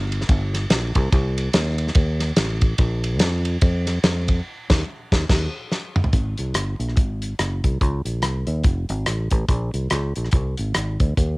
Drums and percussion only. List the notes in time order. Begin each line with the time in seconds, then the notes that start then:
0.12 ride bell
0.21 snare
0.29 kick, ride bell
0.54 snare, ride bell
0.70 snare, ride bell
0.95 kick, ride bell
1.12 kick, ride bell
1.38 ride bell
1.53 snare, ride bell
1.78 ride bell
1.88 snare
1.95 kick, ride bell
2.20 snare, ride bell
2.37 snare, ride bell
2.61 kick, ride bell
2.78 kick, ride bell
3.04 ride bell
3.19 snare, ride bell
3.45 ride bell
3.61 kick, ride bell
3.87 snare, ride bell
4.04 snare, ride bell
4.28 kick, ride bell
4.70 kick, snare, crash
5.12 kick, snare
5.29 kick, snare, crash
5.72 snare
5.96 mid tom
6.04 floor tom
6.13 kick, closed hi-hat
6.38 closed hi-hat
6.54 cross-stick, closed hi-hat
6.80 closed hi-hat
6.89 cross-stick
6.97 kick, closed hi-hat
7.22 closed hi-hat
7.39 cross-stick, closed hi-hat
7.64 kick, closed hi-hat
7.81 kick, closed hi-hat
8.06 closed hi-hat
8.22 cross-stick, closed hi-hat
8.47 closed hi-hat
8.63 kick, closed hi-hat
8.89 closed hi-hat
9.06 cross-stick, closed hi-hat
9.30 kick, closed hi-hat
9.48 kick, closed hi-hat
9.74 closed hi-hat
9.90 cross-stick, closed hi-hat
10.16 closed hi-hat
10.25 cross-stick
10.31 kick, closed hi-hat
10.57 closed hi-hat
10.74 cross-stick, closed hi-hat
11.00 kick, closed hi-hat
11.17 kick, closed hi-hat